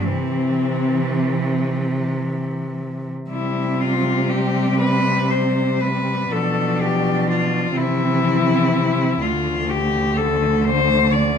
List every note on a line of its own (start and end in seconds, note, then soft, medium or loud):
0.05 3.11 C3 soft
0.05 2.51 E3 soft
0.05 3.11 E3 soft
0.05 1.69 C4 medium
3.30 6.28 C3 medium
3.30 6.28 G3 soft
3.30 6.28 C4 soft
3.30 3.83 E4 medium
3.81 4.31 F4 medium
4.30 4.79 G4 medium
4.80 5.32 B4 medium
5.31 5.83 C5 medium
5.81 6.33 B4 medium
6.32 7.73 B2 medium
6.32 7.72 F3 medium
6.32 7.72 D4 soft
6.32 6.83 A4 medium
6.81 7.29 G4 medium
7.30 7.78 F4 medium
7.75 9.19 C3 medium
7.75 9.18 E3 medium
7.75 9.18 C4 soft
7.75 9.23 E4 medium
9.21 11.38 D2 medium
9.21 11.38 D3 medium
9.21 11.38 A3 medium
9.21 9.71 F4 medium
9.70 10.19 G4 medium
10.17 10.66 A4 medium
10.64 11.14 C5 medium
11.12 11.38 D5 medium